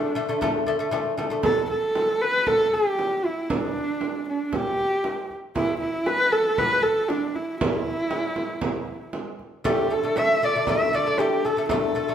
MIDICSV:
0, 0, Header, 1, 4, 480
1, 0, Start_track
1, 0, Tempo, 512383
1, 1356, Time_signature, 4, 2, 24, 8
1, 11378, End_track
2, 0, Start_track
2, 0, Title_t, "Horsehead fiddle"
2, 0, Program_c, 0, 110
2, 0, Note_on_c, 0, 62, 96
2, 884, Note_off_c, 0, 62, 0
2, 1349, Note_on_c, 0, 69, 107
2, 1576, Note_off_c, 0, 69, 0
2, 1602, Note_on_c, 0, 69, 102
2, 2076, Note_on_c, 0, 71, 111
2, 2090, Note_off_c, 0, 69, 0
2, 2317, Note_on_c, 0, 69, 116
2, 2331, Note_off_c, 0, 71, 0
2, 2562, Note_on_c, 0, 67, 100
2, 2576, Note_off_c, 0, 69, 0
2, 3048, Note_on_c, 0, 64, 89
2, 3062, Note_off_c, 0, 67, 0
2, 3282, Note_on_c, 0, 62, 101
2, 3297, Note_off_c, 0, 64, 0
2, 4001, Note_off_c, 0, 62, 0
2, 4023, Note_on_c, 0, 62, 84
2, 4266, Note_on_c, 0, 67, 103
2, 4280, Note_off_c, 0, 62, 0
2, 4973, Note_off_c, 0, 67, 0
2, 5210, Note_on_c, 0, 64, 102
2, 5429, Note_off_c, 0, 64, 0
2, 5441, Note_on_c, 0, 64, 93
2, 5683, Note_on_c, 0, 71, 109
2, 5698, Note_off_c, 0, 64, 0
2, 5925, Note_on_c, 0, 69, 107
2, 5939, Note_off_c, 0, 71, 0
2, 6170, Note_on_c, 0, 71, 115
2, 6184, Note_off_c, 0, 69, 0
2, 6399, Note_on_c, 0, 69, 108
2, 6413, Note_off_c, 0, 71, 0
2, 6639, Note_on_c, 0, 62, 95
2, 6653, Note_off_c, 0, 69, 0
2, 6893, Note_on_c, 0, 64, 90
2, 6907, Note_off_c, 0, 62, 0
2, 7127, Note_off_c, 0, 64, 0
2, 7134, Note_on_c, 0, 64, 98
2, 8531, Note_off_c, 0, 64, 0
2, 9058, Note_on_c, 0, 67, 95
2, 9304, Note_on_c, 0, 69, 96
2, 9318, Note_off_c, 0, 67, 0
2, 9542, Note_on_c, 0, 76, 108
2, 9556, Note_off_c, 0, 69, 0
2, 9787, Note_on_c, 0, 74, 102
2, 9801, Note_off_c, 0, 76, 0
2, 10028, Note_on_c, 0, 76, 107
2, 10042, Note_off_c, 0, 74, 0
2, 10261, Note_on_c, 0, 74, 102
2, 10275, Note_off_c, 0, 76, 0
2, 10490, Note_on_c, 0, 67, 96
2, 10504, Note_off_c, 0, 74, 0
2, 10726, Note_on_c, 0, 69, 98
2, 10740, Note_off_c, 0, 67, 0
2, 10951, Note_off_c, 0, 69, 0
2, 10956, Note_on_c, 0, 69, 94
2, 11378, Note_off_c, 0, 69, 0
2, 11378, End_track
3, 0, Start_track
3, 0, Title_t, "Lute"
3, 0, Program_c, 1, 24
3, 0, Note_on_c, 1, 50, 94
3, 0, Note_on_c, 1, 57, 104
3, 100, Note_off_c, 1, 50, 0
3, 105, Note_off_c, 1, 57, 0
3, 142, Note_on_c, 1, 50, 86
3, 152, Note_on_c, 1, 57, 100
3, 244, Note_off_c, 1, 50, 0
3, 249, Note_off_c, 1, 57, 0
3, 267, Note_on_c, 1, 50, 78
3, 274, Note_on_c, 1, 57, 93
3, 367, Note_off_c, 1, 50, 0
3, 371, Note_off_c, 1, 57, 0
3, 384, Note_on_c, 1, 50, 93
3, 395, Note_on_c, 1, 57, 115
3, 582, Note_off_c, 1, 50, 0
3, 587, Note_off_c, 1, 57, 0
3, 623, Note_on_c, 1, 50, 83
3, 635, Note_on_c, 1, 57, 104
3, 725, Note_off_c, 1, 50, 0
3, 731, Note_off_c, 1, 57, 0
3, 741, Note_on_c, 1, 50, 81
3, 751, Note_on_c, 1, 57, 91
3, 844, Note_off_c, 1, 50, 0
3, 849, Note_off_c, 1, 57, 0
3, 856, Note_on_c, 1, 50, 94
3, 865, Note_on_c, 1, 57, 105
3, 1058, Note_off_c, 1, 50, 0
3, 1063, Note_off_c, 1, 57, 0
3, 1101, Note_on_c, 1, 50, 79
3, 1110, Note_on_c, 1, 57, 91
3, 1204, Note_off_c, 1, 50, 0
3, 1209, Note_off_c, 1, 57, 0
3, 1220, Note_on_c, 1, 50, 79
3, 1230, Note_on_c, 1, 57, 83
3, 1324, Note_off_c, 1, 50, 0
3, 1329, Note_off_c, 1, 57, 0
3, 9034, Note_on_c, 1, 50, 94
3, 9042, Note_on_c, 1, 57, 111
3, 9230, Note_off_c, 1, 50, 0
3, 9234, Note_off_c, 1, 57, 0
3, 9277, Note_on_c, 1, 50, 66
3, 9284, Note_on_c, 1, 57, 73
3, 9375, Note_off_c, 1, 50, 0
3, 9378, Note_off_c, 1, 57, 0
3, 9400, Note_on_c, 1, 50, 69
3, 9410, Note_on_c, 1, 57, 75
3, 9496, Note_off_c, 1, 50, 0
3, 9501, Note_off_c, 1, 57, 0
3, 9524, Note_on_c, 1, 50, 96
3, 9534, Note_on_c, 1, 57, 97
3, 9714, Note_off_c, 1, 50, 0
3, 9719, Note_off_c, 1, 57, 0
3, 9764, Note_on_c, 1, 50, 77
3, 9772, Note_on_c, 1, 57, 85
3, 9858, Note_off_c, 1, 50, 0
3, 9862, Note_off_c, 1, 57, 0
3, 9888, Note_on_c, 1, 50, 74
3, 9896, Note_on_c, 1, 57, 80
3, 9980, Note_off_c, 1, 50, 0
3, 9984, Note_off_c, 1, 57, 0
3, 10003, Note_on_c, 1, 50, 86
3, 10014, Note_on_c, 1, 57, 102
3, 10194, Note_off_c, 1, 50, 0
3, 10199, Note_off_c, 1, 57, 0
3, 10241, Note_on_c, 1, 50, 82
3, 10253, Note_on_c, 1, 57, 90
3, 10337, Note_off_c, 1, 50, 0
3, 10342, Note_off_c, 1, 57, 0
3, 10367, Note_on_c, 1, 50, 69
3, 10373, Note_on_c, 1, 57, 74
3, 10459, Note_off_c, 1, 50, 0
3, 10463, Note_off_c, 1, 57, 0
3, 10481, Note_on_c, 1, 50, 84
3, 10494, Note_on_c, 1, 57, 95
3, 10672, Note_off_c, 1, 50, 0
3, 10678, Note_off_c, 1, 57, 0
3, 10725, Note_on_c, 1, 50, 72
3, 10735, Note_on_c, 1, 57, 78
3, 10818, Note_off_c, 1, 50, 0
3, 10823, Note_off_c, 1, 57, 0
3, 10839, Note_on_c, 1, 50, 71
3, 10850, Note_on_c, 1, 57, 81
3, 10935, Note_off_c, 1, 50, 0
3, 10941, Note_off_c, 1, 57, 0
3, 10958, Note_on_c, 1, 50, 98
3, 10971, Note_on_c, 1, 57, 105
3, 11151, Note_off_c, 1, 50, 0
3, 11157, Note_off_c, 1, 57, 0
3, 11194, Note_on_c, 1, 50, 72
3, 11202, Note_on_c, 1, 57, 80
3, 11292, Note_off_c, 1, 50, 0
3, 11296, Note_off_c, 1, 57, 0
3, 11320, Note_on_c, 1, 50, 74
3, 11328, Note_on_c, 1, 57, 77
3, 11378, Note_off_c, 1, 50, 0
3, 11378, Note_off_c, 1, 57, 0
3, 11378, End_track
4, 0, Start_track
4, 0, Title_t, "Frame drum"
4, 154, Note_on_c, 9, 64, 24
4, 248, Note_off_c, 9, 64, 0
4, 392, Note_on_c, 9, 64, 67
4, 486, Note_off_c, 9, 64, 0
4, 873, Note_on_c, 9, 64, 60
4, 966, Note_off_c, 9, 64, 0
4, 1110, Note_on_c, 9, 64, 60
4, 1203, Note_off_c, 9, 64, 0
4, 1232, Note_on_c, 9, 64, 24
4, 1326, Note_off_c, 9, 64, 0
4, 1342, Note_on_c, 9, 64, 84
4, 1436, Note_off_c, 9, 64, 0
4, 1587, Note_on_c, 9, 64, 28
4, 1680, Note_off_c, 9, 64, 0
4, 1831, Note_on_c, 9, 64, 66
4, 1924, Note_off_c, 9, 64, 0
4, 2311, Note_on_c, 9, 64, 64
4, 2404, Note_off_c, 9, 64, 0
4, 2561, Note_on_c, 9, 64, 24
4, 2655, Note_off_c, 9, 64, 0
4, 2799, Note_on_c, 9, 64, 51
4, 2893, Note_off_c, 9, 64, 0
4, 3045, Note_on_c, 9, 64, 23
4, 3138, Note_off_c, 9, 64, 0
4, 3280, Note_on_c, 9, 64, 77
4, 3373, Note_off_c, 9, 64, 0
4, 3519, Note_on_c, 9, 64, 26
4, 3613, Note_off_c, 9, 64, 0
4, 3756, Note_on_c, 9, 64, 56
4, 3850, Note_off_c, 9, 64, 0
4, 4239, Note_on_c, 9, 64, 65
4, 4333, Note_off_c, 9, 64, 0
4, 4483, Note_on_c, 9, 64, 21
4, 4577, Note_off_c, 9, 64, 0
4, 4722, Note_on_c, 9, 64, 59
4, 4816, Note_off_c, 9, 64, 0
4, 4968, Note_on_c, 9, 64, 25
4, 5062, Note_off_c, 9, 64, 0
4, 5204, Note_on_c, 9, 64, 75
4, 5298, Note_off_c, 9, 64, 0
4, 5439, Note_on_c, 9, 64, 26
4, 5532, Note_off_c, 9, 64, 0
4, 5679, Note_on_c, 9, 64, 58
4, 5773, Note_off_c, 9, 64, 0
4, 6164, Note_on_c, 9, 64, 71
4, 6258, Note_off_c, 9, 64, 0
4, 6409, Note_on_c, 9, 64, 25
4, 6503, Note_off_c, 9, 64, 0
4, 6652, Note_on_c, 9, 64, 58
4, 6746, Note_off_c, 9, 64, 0
4, 6889, Note_on_c, 9, 64, 26
4, 6982, Note_off_c, 9, 64, 0
4, 7130, Note_on_c, 9, 64, 85
4, 7223, Note_off_c, 9, 64, 0
4, 7367, Note_on_c, 9, 64, 28
4, 7460, Note_off_c, 9, 64, 0
4, 7595, Note_on_c, 9, 64, 68
4, 7688, Note_off_c, 9, 64, 0
4, 7832, Note_on_c, 9, 64, 54
4, 7926, Note_off_c, 9, 64, 0
4, 8069, Note_on_c, 9, 64, 76
4, 8163, Note_off_c, 9, 64, 0
4, 8309, Note_on_c, 9, 64, 27
4, 8403, Note_off_c, 9, 64, 0
4, 8554, Note_on_c, 9, 64, 58
4, 8648, Note_off_c, 9, 64, 0
4, 8798, Note_on_c, 9, 64, 25
4, 8892, Note_off_c, 9, 64, 0
4, 9040, Note_on_c, 9, 64, 80
4, 9134, Note_off_c, 9, 64, 0
4, 9280, Note_on_c, 9, 64, 29
4, 9374, Note_off_c, 9, 64, 0
4, 9517, Note_on_c, 9, 64, 62
4, 9611, Note_off_c, 9, 64, 0
4, 9993, Note_on_c, 9, 64, 74
4, 10087, Note_off_c, 9, 64, 0
4, 10238, Note_on_c, 9, 64, 28
4, 10332, Note_off_c, 9, 64, 0
4, 10471, Note_on_c, 9, 64, 64
4, 10565, Note_off_c, 9, 64, 0
4, 10715, Note_on_c, 9, 64, 26
4, 10809, Note_off_c, 9, 64, 0
4, 10954, Note_on_c, 9, 64, 76
4, 11048, Note_off_c, 9, 64, 0
4, 11198, Note_on_c, 9, 64, 27
4, 11292, Note_off_c, 9, 64, 0
4, 11378, End_track
0, 0, End_of_file